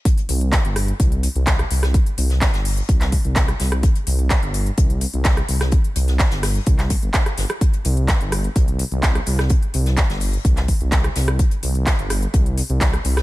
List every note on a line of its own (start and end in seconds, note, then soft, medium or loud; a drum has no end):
0.05 kick loud
0.05 closed hi-hat loud
0.05 closed hi-hat medium
0.18 closed hi-hat soft
0.29 0.57 C2 loud
0.29 closed hi-hat medium
0.29 open hi-hat loud
0.41 closed hi-hat soft
0.52 kick loud
0.52 snare loud
0.52 clap loud
0.52 closed hi-hat medium
0.65 0.92 G1 medium
0.65 closed hi-hat soft
0.76 cross-stick medium
0.76 closed hi-hat medium
0.76 open hi-hat loud
0.88 closed hi-hat soft
1.00 1.28 C2 medium
1.00 kick loud
1.00 closed hi-hat loud
1.00 closed hi-hat medium
1.12 closed hi-hat soft
1.23 closed hi-hat medium
1.23 open hi-hat loud
1.35 1.63 C2 loud
1.35 closed hi-hat soft
1.47 kick loud
1.47 snare loud
1.47 clap loud
1.47 closed hi-hat medium
1.59 cross-stick medium
1.59 closed hi-hat soft
1.71 1.99 C2 loud
1.71 closed hi-hat medium
1.71 open hi-hat loud
1.83 cross-stick medium
1.83 snare soft
1.83 closed hi-hat soft
1.94 kick loud
1.94 closed hi-hat loud
1.94 closed hi-hat medium
2.06 closed hi-hat soft
2.17 2.46 C2 loud
2.17 closed hi-hat medium
2.17 open hi-hat loud
2.30 snare soft
2.30 closed hi-hat soft
2.41 kick loud
2.41 snare loud
2.41 clap loud
2.41 closed hi-hat medium
2.54 2.82 G1 medium
2.54 snare medium
2.54 closed hi-hat soft
2.65 open hi-hat medium
2.65 open hi-hat loud
2.77 closed hi-hat soft
2.89 3.17 C2 medium
2.89 kick loud
2.89 closed hi-hat medium
3.01 snare soft
3.01 clap soft
3.01 closed hi-hat soft
3.12 kick medium
3.12 closed hi-hat medium
3.12 open hi-hat loud
3.25 3.52 C2 loud
3.25 closed hi-hat soft
3.36 kick loud
3.36 snare loud
3.36 clap loud
3.36 closed hi-hat medium
3.48 cross-stick medium
3.48 closed hi-hat soft
3.60 3.88 C2 loud
3.60 snare medium
3.60 closed hi-hat medium
3.60 open hi-hat loud
3.72 cross-stick medium
3.72 closed hi-hat soft
3.83 kick loud
3.83 closed hi-hat medium
3.95 closed hi-hat soft
4.07 4.35 C2 loud
4.07 closed hi-hat medium
4.07 open hi-hat loud
4.19 closed hi-hat soft
4.30 kick loud
4.30 snare loud
4.30 clap loud
4.30 closed hi-hat medium
4.43 4.70 G1 medium
4.43 closed hi-hat soft
4.54 closed hi-hat medium
4.54 open hi-hat loud
4.66 closed hi-hat soft
4.77 5.06 C2 medium
4.77 kick loud
4.77 closed hi-hat medium
4.90 closed hi-hat soft
5.01 closed hi-hat medium
5.01 open hi-hat loud
5.13 5.41 C2 loud
5.13 closed hi-hat soft
5.24 kick loud
5.24 snare loud
5.24 clap loud
5.24 closed hi-hat medium
5.37 cross-stick medium
5.37 closed hi-hat soft
5.49 5.77 C2 medium
5.49 closed hi-hat medium
5.49 open hi-hat loud
5.61 cross-stick medium
5.61 snare soft
5.61 closed hi-hat soft
5.71 kick loud
5.71 closed hi-hat medium
5.84 closed hi-hat soft
5.96 6.24 C2 loud
5.96 closed hi-hat medium
5.96 open hi-hat loud
6.08 snare soft
6.08 closed hi-hat soft
6.19 kick loud
6.19 snare loud
6.19 clap loud
6.19 closed hi-hat medium
6.30 6.59 G1 medium
6.30 snare medium
6.30 closed hi-hat soft
6.43 cross-stick medium
6.43 snare soft
6.43 open hi-hat loud
6.43 open hi-hat medium
6.55 closed hi-hat soft
6.67 6.95 C2 loud
6.67 kick loud
6.67 closed hi-hat medium
6.79 snare soft
6.79 clap soft
6.79 closed hi-hat soft
6.90 kick medium
6.90 closed hi-hat medium
6.90 open hi-hat loud
7.02 7.09 G1 medium
7.02 closed hi-hat soft
7.14 kick loud
7.14 snare loud
7.14 clap loud
7.14 closed hi-hat medium
7.26 cross-stick medium
7.26 closed hi-hat soft
7.37 7.45 G1 loud
7.37 snare medium
7.37 closed hi-hat medium
7.37 open hi-hat loud
7.50 cross-stick medium
7.50 closed hi-hat soft
7.61 kick loud
7.61 closed hi-hat medium
7.74 closed hi-hat soft
7.85 8.13 C2 loud
7.85 closed hi-hat medium
7.85 open hi-hat loud
7.97 closed hi-hat soft
8.08 kick loud
8.08 snare loud
8.08 clap loud
8.08 closed hi-hat medium
8.21 8.48 G1 medium
8.21 closed hi-hat soft
8.32 cross-stick medium
8.32 closed hi-hat medium
8.32 open hi-hat loud
8.44 closed hi-hat soft
8.56 8.84 C2 medium
8.56 kick loud
8.56 closed hi-hat medium
8.68 closed hi-hat soft
8.79 closed hi-hat medium
8.79 open hi-hat loud
8.92 9.19 C2 loud
8.92 closed hi-hat soft
9.03 kick loud
9.03 snare loud
9.03 clap loud
9.03 closed hi-hat medium
9.15 cross-stick medium
9.15 closed hi-hat soft
9.26 9.55 C2 medium
9.26 closed hi-hat medium
9.26 open hi-hat loud
9.39 cross-stick medium
9.39 snare soft
9.39 closed hi-hat soft
9.49 kick loud
9.49 closed hi-hat medium
9.63 closed hi-hat soft
9.74 10.02 C2 loud
9.74 closed hi-hat medium
9.74 open hi-hat loud
9.86 snare soft
9.86 closed hi-hat soft
9.96 kick loud
9.96 snare loud
9.96 clap loud
9.96 closed hi-hat medium
10.10 10.37 G1 medium
10.10 snare medium
10.10 closed hi-hat soft
10.20 open hi-hat medium
10.20 open hi-hat loud
10.33 closed hi-hat soft
10.45 10.73 C2 medium
10.45 kick loud
10.45 closed hi-hat medium
10.56 snare soft
10.56 clap soft
10.56 closed hi-hat soft
10.68 kick medium
10.68 closed hi-hat medium
10.68 open hi-hat loud
10.81 11.08 C2 loud
10.81 closed hi-hat soft
10.91 kick loud
10.91 snare loud
10.91 clap loud
10.91 closed hi-hat loud
10.91 closed hi-hat medium
11.04 cross-stick medium
11.04 closed hi-hat soft
11.15 11.44 C2 medium
11.15 snare medium
11.15 closed hi-hat medium
11.15 open hi-hat loud
11.28 cross-stick medium
11.28 closed hi-hat soft
11.39 kick loud
11.39 closed hi-hat medium
11.39 closed hi-hat loud
11.51 closed hi-hat soft
11.63 11.91 C2 loud
11.63 closed hi-hat medium
11.63 open hi-hat medium
11.75 closed hi-hat soft
11.87 kick loud
11.87 snare loud
11.87 clap loud
11.87 closed hi-hat loud
11.87 closed hi-hat medium
11.99 12.26 G1 loud
11.99 closed hi-hat soft
12.10 cross-stick medium
12.10 closed hi-hat medium
12.10 open hi-hat loud
12.22 closed hi-hat soft
12.34 12.62 C2 medium
12.34 kick loud
12.34 closed hi-hat medium
12.34 closed hi-hat loud
12.46 closed hi-hat soft
12.58 closed hi-hat medium
12.58 open hi-hat loud
12.69 12.97 C2 loud
12.69 closed hi-hat soft
12.81 kick loud
12.81 snare loud
12.81 clap loud
12.81 closed hi-hat medium
12.81 closed hi-hat loud
12.93 cross-stick medium
12.93 closed hi-hat soft
13.04 13.22 C2 medium
13.04 closed hi-hat medium
13.04 open hi-hat loud
13.17 cross-stick medium
13.17 snare soft
13.17 closed hi-hat soft